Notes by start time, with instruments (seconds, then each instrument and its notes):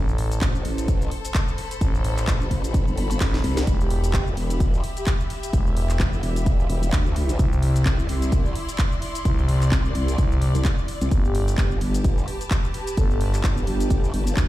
Already playing: fm bass A1, string section G4 A4 A5
0.09 shaker
0.18 open hi-hat
0.32 string section C5, closed hi-hat, shaker
0.41 wobble bass A1, kick, clap, closed hi-hat, shaker
0.55 shaker
0.65 wobble bass A1, open hi-hat
0.78 closed hi-hat, shaker
0.88 kick, closed hi-hat, shaker
1.02 shaker
1.11 open hi-hat
1.25 closed hi-hat, shaker
1.34 kick, clap, closed hi-hat, shaker
1.41 string section B5
1.48 shaker
1.58 open hi-hat
1.71 closed hi-hat, shaker
1.81 fm bass A1, kick, closed hi-hat, shaker
1.95 shaker
2.04 open hi-hat
2.17 clap, closed hi-hat, shaker
2.27 wobble bass A1, kick, clap, closed hi-hat, shaker
2.41 shaker
2.51 wobble bass A1, kick, open hi-hat
2.64 closed hi-hat, shaker
2.74 kick, closed hi-hat, shaker
2.87 wobble bass G1, shaker
2.97 open hi-hat
3.11 closed hi-hat, shaker
3.20 fm bass A1, kick, snare, clap, closed hi-hat, shaker
3.34 snare, shaker
3.44 wobble bass C2, open hi-hat
3.57 snare, closed hi-hat, shaker
3.67 fm bass E1, string section G4, kick, closed hi-hat, shaker
3.80 soft synth lead G4, shaker
3.90 open hi-hat
4.04 string section E5, closed hi-hat, shaker
4.13 wobble bass E1, kick, clap, closed hi-hat, shaker
4.27 shaker
4.37 wobble bass E1, open hi-hat
4.50 closed hi-hat, shaker
4.60 kick, closed hi-hat, shaker
4.74 shaker
4.84 open hi-hat
4.97 soft synth lead G4, closed hi-hat, shaker
5.07 soft synth lead G4, kick, clap, closed hi-hat, shaker
5.20 shaker
5.30 open hi-hat
5.43 closed hi-hat, shaker
5.53 fm bass E1, kick, closed hi-hat, shaker
5.67 shaker
5.77 open hi-hat
5.90 clap, closed hi-hat, shaker
6.00 wobble bass E1, kick, clap, closed hi-hat, shaker
6.13 shaker
6.23 wobble bass E1, open hi-hat
6.36 closed hi-hat, shaker
6.46 kick, closed hi-hat, shaker
6.60 shaker
6.70 wobble bass E1, open hi-hat
6.83 closed hi-hat, shaker
6.92 wobble bass D2, kick, clap, closed hi-hat, shaker
7.06 shaker
7.16 open hi-hat
7.29 closed hi-hat, shaker
7.39 fm bass C2, string section E4, kick, closed hi-hat, shaker
7.53 shaker
7.62 string section C6, open hi-hat
7.67 string section D5
7.76 closed hi-hat, shaker
7.86 wobble bass C2, kick, clap, closed hi-hat, shaker
7.99 shaker
8.09 wobble bass C2, open hi-hat
8.22 closed hi-hat, shaker
8.32 kick, closed hi-hat, shaker
8.46 shaker
8.55 open hi-hat
8.69 closed hi-hat, shaker
8.78 kick, clap, closed hi-hat, shaker
8.92 shaker
9.02 open hi-hat
9.15 closed hi-hat, shaker
9.25 fm bass C2, kick, closed hi-hat, shaker
9.39 shaker
9.49 open hi-hat
9.62 clap, closed hi-hat, shaker
9.72 wobble bass C2, kick, clap, closed hi-hat, shaker
9.85 shaker
9.95 wobble bass C2, open hi-hat
10.08 closed hi-hat, shaker
10.18 fm bass C2, kick, closed hi-hat, shaker
10.32 shaker
10.42 open hi-hat
10.55 wobble bass C2, closed hi-hat, shaker
10.65 kick, clap, closed hi-hat, shaker
10.78 shaker
10.88 open hi-hat
11.01 wobble bass C2, closed hi-hat, shaker
11.11 fm bass G1, string section G4, kick, closed hi-hat, shaker
11.25 soft synth lead G4, shaker
11.35 open hi-hat
11.48 string section B4, closed hi-hat, shaker
11.58 wobble bass G1, kick, clap, closed hi-hat, shaker
11.71 shaker
11.81 wobble bass G1, open hi-hat
11.86 string section A5
11.94 closed hi-hat, shaker
12.04 kick, closed hi-hat, shaker
12.18 shaker
12.28 open hi-hat
12.41 closed hi-hat, shaker
12.51 kick, clap, closed hi-hat, shaker
12.64 shaker
12.74 open hi-hat
12.87 closed hi-hat, shaker
12.97 fm bass G1, soft synth lead A4, kick, closed hi-hat, shaker
13.11 soft synth lead A4, shaker
13.21 open hi-hat
13.34 clap, closed hi-hat, shaker
13.44 wobble bass G1, kick, clap, closed hi-hat, shaker
13.57 shaker
13.67 wobble bass G1, soft synth lead G4, open hi-hat
13.80 closed hi-hat, shaker
13.90 kick, closed hi-hat, shaker
14.04 shaker
14.14 wobble bass G1, open hi-hat
14.27 closed hi-hat, shaker
14.37 wobble bass D2, kick, clap, closed hi-hat, shaker